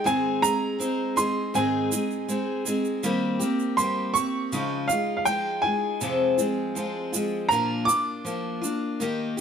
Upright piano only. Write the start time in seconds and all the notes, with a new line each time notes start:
0.06 G#5
0.42 A#5
1.17 C6
1.55 G#5
3.77 C6
4.14 C#6
4.88 F5
5.17 F5
5.25 G5
5.62 G#5
7.49 A#5
7.85 D6